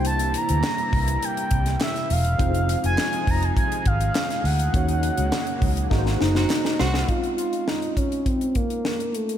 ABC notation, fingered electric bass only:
X:1
M:4/4
L:1/16
Q:1/4=102
K:Db
V:1 name="Fingered electric bass" clef=bass
C,,3 =D,, z2 C,,2 z2 C,,2 z2 =E,,,2 | F,,,3 F,,, z2 F,,,2 z2 A,,,2 z2 =D,,2 | E,,3 D,, z2 D,,2 A,,,2 G,,,2 z2 C,,2 | z16 |]